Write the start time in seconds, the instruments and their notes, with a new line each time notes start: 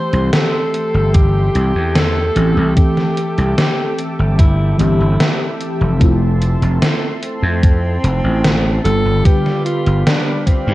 Already playing: fm electric piano E3 A3 C4 G4, analog synth pad A4 E5 G5 C6, alto saxophone C5
0.13 slap bass C2, closed hi-hat
0.33 alto saxophone A4, snare, closed hi-hat
0.74 closed hi-hat
0.94 slap bass G1
1.14 alto saxophone G4, kick, closed hi-hat
1.55 slap bass C2, closed hi-hat
1.75 slap bass E2
1.95 alto saxophone A4, snare, closed hi-hat
2.36 slap bass A1, fm electric piano E3 A3 C4 G4, closed hi-hat
2.57 slap bass C2
2.75 fm electric piano E3 A3 C4 A4, alto saxophone G4, analog synth pad D6, kick, closed hi-hat
2.97 snare
3.17 closed hi-hat
3.38 slap bass C2, closed hi-hat
3.58 alto saxophone G4, snare, closed hi-hat
3.99 closed hi-hat
4.19 slap bass G1
4.39 alto saxophone E4, kick, closed hi-hat
4.78 slap bass G1, fm electric piano E3 A3 C4 G4, alto saxophone E4, closed hi-hat
5.00 slap bass G1
5.20 snare, closed hi-hat
5.61 closed hi-hat
5.81 slap bass F1
6.00 fm electric piano A3 C4 E4 F4, analog synth pad A5 C6, kick, closed hi-hat
6.42 closed hi-hat
6.62 slap bass F1, closed hi-hat
6.82 snare, closed hi-hat
7.22 alto saxophone C4, closed hi-hat
7.43 slap bass F2
7.63 kick, closed hi-hat
8.04 slap bass F1, closed hi-hat
8.24 slap bass A1
8.44 snare, closed hi-hat
8.84 slap bass G1, fm electric piano D3 G3 B3 F4, analog synth pad G4 D5 F5 B5, alto saxophone A4, closed hi-hat
9.05 slap bass G1
9.24 fm electric piano D3 G3 G4 B4, alto saxophone G4, kick, closed hi-hat
9.46 snare
9.64 alto saxophone F4, closed hi-hat
9.86 slap bass G1, closed hi-hat
10.06 alto saxophone D4, snare, closed hi-hat
10.47 alto saxophone C4, kick, closed hi-hat
10.67 slap bass G2